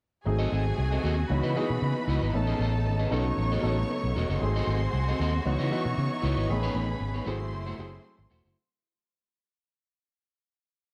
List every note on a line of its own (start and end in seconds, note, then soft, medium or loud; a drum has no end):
0.25 0.45 G#1 medium
0.25 1.29 C3 medium
0.25 0.95 F#3 medium
0.25 0.96 A3 medium
0.25 1.29 A3 medium
0.25 0.96 C4 medium
0.25 0.96 D#4 medium
0.25 2.32 F#4 medium
0.25 1.28 G#4 medium
0.25 1.29 G#4 medium
0.25 0.96 G#4 medium
0.25 1.28 G#5 medium
0.25 muted clean electric guitar stroke soft
0.39 0.50 C4 medium
0.39 0.51 F#4 medium
0.39 0.52 A4 medium
0.39 0.52 D#5 medium
0.51 0.71 G#1 medium
0.51 0.65 C4 medium
0.51 0.65 F#4 medium
0.51 0.65 A4 medium
0.51 0.65 D#5 medium
0.66 muted clean electric guitar stroke soft
0.77 0.97 C2 medium
0.77 muted clean electric guitar stroke soft
0.92 1.02 C4 soft
0.92 1.03 F#4 medium
0.92 1.04 A4 medium
0.92 1.04 D#5 medium
1.04 1.23 D#2 medium
1.04 1.20 C4 medium
1.04 1.17 F#4 medium
1.04 1.17 A4 medium
1.04 1.16 D#5 medium
1.17 muted clean electric guitar stroke soft
1.29 1.40 C#2 medium
1.29 1.51 E3 medium
1.29 2.33 E3 medium
1.29 1.51 B3 medium
1.29 3.10 B3 medium
1.29 1.51 C#4 medium
1.29 4.38 D#4 medium
1.29 1.52 D#4 medium
1.29 1.52 F#4 loud
1.29 2.32 B4 medium
1.29 2.32 B5 medium
1.29 muted clean electric guitar stroke soft
1.43 1.53 C#3 medium
1.43 1.55 E4 medium
1.43 1.55 F#4 medium
1.43 1.56 B4 medium
1.43 1.56 D#5 medium
1.56 2.08 E3 medium
1.56 2.08 B3 medium
1.56 2.08 C#4 medium
1.56 2.08 D#4 medium
1.56 1.69 E4 medium
1.56 1.69 F#4 medium
1.56 2.08 G#4 loud
1.56 1.70 B4 medium
1.56 1.69 D#5 medium
1.70 1.79 B2 medium
1.70 muted clean electric guitar stroke soft
1.82 1.92 C#3 medium
1.82 muted clean electric guitar stroke soft
1.96 muted clean electric guitar stroke soft
2.08 2.18 C#2 medium
2.08 2.23 E4 medium
2.08 2.23 F#4 medium
2.08 2.22 B4 medium
2.08 2.21 D#5 medium
2.21 2.30 G#1 medium
2.21 2.34 E4 soft
2.21 2.34 F#4 medium
2.21 2.34 B4 medium
2.21 2.34 D#5 medium
2.33 2.52 A1 loud
2.33 4.40 C#3 medium
2.33 3.03 A3 medium
2.33 3.11 A3 medium
2.33 3.03 B3 medium
2.33 3.04 C#4 medium
2.33 3.04 D#4 medium
2.33 3.11 A4 medium
2.33 3.04 A4 medium
2.33 3.11 A5 medium
2.33 muted clean electric guitar stroke soft
2.47 2.59 C#4 medium
2.47 2.59 G#4 medium
2.47 2.61 B4 medium
2.47 2.61 D#5 medium
2.59 2.86 A1 loud
2.59 2.73 C#4 medium
2.59 2.73 G#4 medium
2.59 2.73 B4 medium
2.59 2.72 D#5 medium
2.73 muted clean electric guitar stroke soft
2.86 3.05 G#1 medium
2.86 muted clean electric guitar stroke soft
2.99 3.10 C#4 medium
2.99 3.12 G#4 medium
2.99 3.11 B4 medium
2.99 3.11 D#5 medium
3.10 3.30 B1 medium
3.10 3.53 F#3 medium
3.10 5.43 A3 medium
3.10 3.54 B3 medium
3.10 4.41 B3 medium
3.10 3.54 C#4 medium
3.10 3.28 C#4 medium
3.10 3.54 D#4 medium
3.10 3.26 F#4 medium
3.10 3.54 A4 loud
3.10 3.25 A4 medium
3.10 4.39 C#5 medium
3.10 3.25 D#5 medium
3.10 4.39 C#6 medium
3.26 muted clean electric guitar stroke soft
3.38 3.56 A1 medium
3.38 muted clean electric guitar stroke soft
3.52 3.63 C#4 medium
3.52 3.63 F#4 medium
3.52 3.64 A4 medium
3.52 3.65 D#5 medium
3.62 3.82 A1 medium
3.62 4.15 F#3 medium
3.62 4.15 B3 medium
3.62 4.15 C#4 medium
3.62 3.77 C#4 medium
3.62 4.15 D#4 medium
3.62 3.77 F#4 medium
3.62 4.15 A4 loud
3.62 3.77 A4 medium
3.62 3.76 D#5 medium
3.78 muted clean electric guitar stroke soft
3.90 muted clean electric guitar stroke medium
4.04 4.12 B1 medium
4.04 muted clean electric guitar stroke soft
4.15 4.25 E1 medium
4.15 4.30 C#4 medium
4.15 4.30 F#4 medium
4.15 4.29 A4 medium
4.15 4.29 D#5 medium
4.29 4.38 F#1 medium
4.29 4.41 C#4 soft
4.29 4.41 F#4 soft
4.29 4.41 A4 medium
4.29 4.41 D#5 medium
4.40 4.60 G#1 loud
4.40 5.45 C3 medium
4.40 5.10 F#3 medium
4.40 5.11 A3 medium
4.40 5.11 C4 medium
4.40 5.11 D#4 medium
4.40 6.47 F#4 medium
4.40 5.11 G#4 medium
4.40 5.45 G#4 medium
4.40 5.44 C5 medium
4.40 5.44 C6 medium
4.40 muted clean electric guitar stroke soft
4.56 4.67 C4 medium
4.56 4.68 F#4 medium
4.56 4.68 A4 medium
4.56 4.69 D#5 medium
4.67 4.86 G#1 loud
4.67 4.81 C4 medium
4.67 4.82 F#4 medium
4.67 4.82 A4 medium
4.67 4.82 D#5 medium
4.93 5.12 C2 medium
4.93 muted clean electric guitar stroke soft
5.08 5.19 C4 medium
5.08 5.20 F#4 soft
5.08 5.20 A4 medium
5.08 5.19 D#5 medium
5.20 5.38 D#2 medium
5.20 5.36 C4 medium
5.20 5.35 F#4 medium
5.20 5.34 A4 medium
5.20 5.34 D#5 medium
5.35 muted clean electric guitar stroke medium
5.45 5.55 C#2 medium
5.45 5.66 E3 medium
5.45 6.48 E3 medium
5.45 5.66 B3 medium
5.45 7.25 B3 medium
5.45 5.67 C#4 medium
5.45 7.25 D#4 medium
5.45 5.67 D#4 medium
5.45 5.67 F#4 loud
5.45 6.47 C#5 medium
5.45 6.47 C#6 medium
5.45 muted clean electric guitar stroke soft
5.59 5.68 C#3 medium
5.59 5.70 E4 medium
5.59 5.71 F#4 medium
5.59 5.71 B4 medium
5.59 5.72 D#5 medium
5.71 6.23 E3 medium
5.71 6.23 B3 medium
5.71 6.23 C#4 medium
5.71 6.23 D#4 medium
5.71 5.84 E4 medium
5.71 6.23 F#4 medium
5.71 5.85 F#4 medium
5.71 5.85 B4 medium
5.71 5.85 D#5 medium
5.85 5.94 B2 medium
5.85 muted clean electric guitar stroke soft
5.98 6.07 C#3 medium
5.98 muted clean electric guitar stroke soft
6.11 muted clean electric guitar stroke soft
6.22 6.33 C#2 medium
6.22 6.37 E4 medium
6.22 6.37 F#4 medium
6.22 6.37 B4 medium
6.22 6.36 D#5 medium
6.36 6.45 G#1 medium
6.36 6.49 E4 medium
6.36 6.49 F#4 medium
6.36 6.49 B4 medium
6.36 6.49 D#5 medium
6.49 6.68 A1 loud
6.49 7.27 C#3 medium
6.49 7.19 D#3 medium
6.49 7.19 A3 medium
6.49 7.19 B3 medium
6.49 7.19 C#4 medium
6.49 7.26 G#4 medium
6.49 7.19 G#4 medium
6.49 7.26 B4 medium
6.49 7.26 B5 medium
6.49 muted clean electric guitar stroke soft
6.63 6.74 B3 medium
6.63 6.75 D#4 medium
6.63 6.75 G#4 loud
6.63 6.76 C#5 medium
6.74 6.93 A1 loud
6.74 6.88 B3 medium
6.74 6.88 D#4 medium
6.74 6.88 G#4 medium
6.74 6.87 C#5 medium
6.88 muted clean electric guitar stroke soft
7.00 7.19 G#1 medium
7.00 muted clean electric guitar stroke soft
7.14 7.25 B3 medium
7.14 7.26 D#4 medium
7.14 7.26 G#4 medium
7.14 7.26 C#5 medium
7.25 7.54 G#1 loud
7.25 8.56 C3 medium
7.25 7.69 F#3 medium
7.25 8.56 F#3 medium
7.25 7.42 A3 medium
7.25 7.69 A3 medium
7.25 8.56 A3 medium
7.25 7.69 C4 medium
7.25 7.40 E4 medium
7.25 8.56 E4 medium
7.25 7.69 E4 medium
7.25 7.39 F#4 loud
7.25 7.70 G#4 medium
7.25 8.54 C5 medium
7.25 7.38 C5 loud
7.25 8.54 C6 medium
7.40 muted clean electric guitar stroke soft
7.52 7.72 F#1 medium
7.52 muted clean electric guitar stroke soft
7.66 7.77 A3 medium
7.66 7.77 E4 medium
7.66 7.78 F#4 medium
7.66 7.78 C5 medium
7.78 7.97 F#1 medium
7.78 8.31 F#3 medium
7.78 7.91 A3 medium
7.78 8.31 A3 medium
7.78 8.31 C4 medium
7.78 7.92 E4 medium
7.78 8.31 E4 medium
7.78 7.91 F#4 medium
7.78 8.31 G#4 loud
7.78 7.90 C5 medium
7.92 muted clean electric guitar stroke soft
8.04 muted clean electric guitar stroke soft
8.18 8.27 G#1 medium
8.18 muted clean electric guitar stroke soft
8.30 8.41 E1 medium
8.30 8.45 A3 medium
8.30 8.44 E4 medium
8.30 8.44 F#4 medium
8.30 8.43 C5 medium
8.44 8.54 F#1 medium
8.44 8.57 A3 soft
8.44 8.57 E4 medium
8.44 8.56 F#4 soft
8.44 8.56 C5 medium